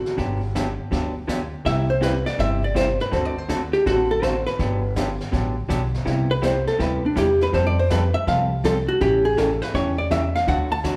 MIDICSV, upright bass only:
0, 0, Header, 1, 2, 480
1, 0, Start_track
1, 0, Key_signature, 1, "major"
1, 0, Tempo, 367647
1, 232, Time_signature, 4, 2, 24, 8
1, 14316, End_track
2, 0, Start_track
2, 0, Title_t, "Upright bass"
2, 0, Program_c, 0, 32
2, 232, Note_on_c, 0, 31, 94
2, 1001, Note_off_c, 0, 31, 0
2, 1197, Note_on_c, 0, 38, 89
2, 1964, Note_off_c, 0, 38, 0
2, 2158, Note_on_c, 0, 36, 93
2, 2925, Note_off_c, 0, 36, 0
2, 3119, Note_on_c, 0, 31, 86
2, 3886, Note_off_c, 0, 31, 0
2, 4081, Note_on_c, 0, 38, 91
2, 4847, Note_off_c, 0, 38, 0
2, 5041, Note_on_c, 0, 33, 86
2, 5807, Note_off_c, 0, 33, 0
2, 5996, Note_on_c, 0, 31, 100
2, 6764, Note_off_c, 0, 31, 0
2, 6960, Note_on_c, 0, 33, 86
2, 7367, Note_off_c, 0, 33, 0
2, 7439, Note_on_c, 0, 35, 85
2, 7846, Note_off_c, 0, 35, 0
2, 7913, Note_on_c, 0, 36, 84
2, 8682, Note_off_c, 0, 36, 0
2, 8875, Note_on_c, 0, 38, 82
2, 9284, Note_off_c, 0, 38, 0
2, 9355, Note_on_c, 0, 40, 86
2, 9764, Note_off_c, 0, 40, 0
2, 9839, Note_on_c, 0, 41, 96
2, 10606, Note_off_c, 0, 41, 0
2, 10800, Note_on_c, 0, 36, 84
2, 11567, Note_off_c, 0, 36, 0
2, 11760, Note_on_c, 0, 33, 99
2, 12527, Note_off_c, 0, 33, 0
2, 12716, Note_on_c, 0, 40, 93
2, 13484, Note_off_c, 0, 40, 0
2, 13679, Note_on_c, 0, 38, 101
2, 14316, Note_off_c, 0, 38, 0
2, 14316, End_track
0, 0, End_of_file